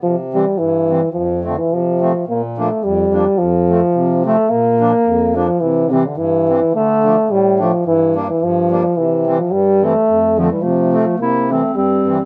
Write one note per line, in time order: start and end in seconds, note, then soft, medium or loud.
0.03 0.46 C3 medium
0.03 0.16 F3 medium
0.33 0.45 E3 medium
0.33 0.45 G3 medium
0.33 0.60 G3 medium
0.33 0.45 C4 medium
0.58 1.02 G2 medium
0.58 1.11 E3 medium
0.90 1.01 E3 medium
0.90 1.01 G3 medium
0.90 1.01 C4 medium
1.12 1.57 F2 medium
1.12 1.41 F3 medium
1.44 1.60 D3 medium
1.44 1.56 F3 medium
1.44 1.56 A3 medium
1.44 1.56 C4 medium
1.58 1.74 E3 medium
1.71 2.14 C3 medium
1.71 2.28 F3 medium
2.01 2.12 F3 medium
2.01 2.12 A3 medium
2.01 2.13 C4 medium
2.27 2.70 A#2 medium
2.27 2.42 A#3 medium
2.57 2.69 F3 medium
2.57 2.85 A3 medium
2.57 2.69 A#3 medium
2.57 2.69 D4 medium
2.83 3.26 F2 medium
2.83 3.40 G3 loud
3.13 3.25 F3 medium
3.13 3.25 A#3 medium
3.13 3.25 D4 medium
3.38 3.82 F2 medium
3.38 4.24 F3 medium
3.69 3.80 F3 medium
3.69 3.81 A3 soft
3.69 3.81 C4 medium
3.94 4.37 C3 medium
4.25 4.37 F3 medium
4.25 4.51 A3 medium
4.25 4.36 A3 medium
4.25 4.37 C4 medium
4.50 4.93 A#2 medium
4.50 5.37 A#3 loud
4.80 4.92 F3 medium
4.80 4.92 A#3 medium
4.80 4.92 D4 medium
5.06 5.48 F2 medium
5.36 5.47 F3 medium
5.36 5.62 F3 medium
5.36 5.47 A#3 medium
5.36 5.47 D4 medium
5.60 6.04 C3 medium
5.60 5.93 E3 medium
5.91 6.08 C3 medium
5.91 6.03 E3 medium
5.91 6.03 G3 medium
5.91 6.03 C4 medium
6.07 6.19 D3 medium
6.17 6.60 G2 medium
6.17 6.74 E3 medium
6.48 6.60 E3 medium
6.48 6.60 G3 soft
6.48 6.60 C4 medium
6.73 7.16 D3 medium
6.73 7.33 A3 loud
7.04 7.16 F3 medium
7.04 7.16 A3 medium
7.04 7.16 D4 medium
7.29 7.72 A2 medium
7.29 7.61 G3 medium
7.59 7.72 F3 medium
7.59 7.85 F3 medium
7.59 7.72 A3 medium
7.59 7.72 D4 medium
7.86 8.28 G2 medium
7.86 8.15 E3 medium
8.15 8.27 G3 medium
8.15 8.27 A#3 medium
8.15 8.27 D4 medium
8.28 8.45 E3 medium
8.41 8.83 G2 medium
8.41 8.98 F3 medium
8.71 8.83 G3 medium
8.71 8.83 A#3 medium
8.71 8.83 D4 medium
8.97 9.39 C3 medium
8.97 9.40 E3 medium
9.26 9.38 E3 medium
9.26 9.38 G3 medium
9.26 9.38 C4 medium
9.39 9.53 F3 medium
9.52 9.94 G2 medium
9.52 9.86 G3 loud
9.81 9.93 E3 medium
9.81 9.93 G3 medium
9.81 10.41 A3 loud
9.81 9.94 C4 medium
10.08 10.50 F2 soft
10.38 10.51 D3 medium
10.38 10.50 F3 medium
10.38 10.50 A3 medium
10.38 10.50 C4 medium
10.50 10.63 E3 medium
10.50 10.65 G3 medium
10.61 11.06 C3 medium
10.61 11.18 F3 loud
10.61 11.20 A3 medium
10.93 11.05 F3 medium
10.93 11.05 A3 medium
10.93 11.05 C4 medium
11.19 11.63 C3 medium
11.19 11.51 A#3 medium
11.19 11.53 E4 medium
11.50 11.62 E3 medium
11.50 11.62 G3 medium
11.50 11.75 A3 medium
11.50 11.62 C4 medium
11.50 11.76 C4 medium
11.75 12.19 G2 medium
11.75 12.22 G3 medium
11.75 12.23 C4 medium
12.07 12.18 E3 soft
12.07 12.18 G3 medium
12.07 12.18 C4 medium